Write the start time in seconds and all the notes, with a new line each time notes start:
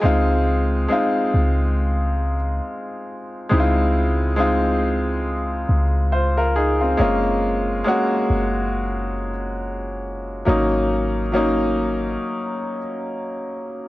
0.01 C#2 G#3 C4 D#4 F4
0.88 G#3 C4 D#4 F4
1.34 C#2
3.49 C#2 G#3 C4 D#4 E4
3.60 F4
4.36 G#3 C4 D#4 F4
5.69 C#2
6.12 F4 C5
6.37 F4 A#4
6.56 D#4 G#4
6.81 C4 F4
6.97 F#1 G#3 A#3 C#4 F4
7.84 G#3 A#3 C#4 F#4
8.30 F#1
10.45 G#1 F#3 A#3 C#4 D#4
11.32 F#3 A#3 C#4
11.36 D#4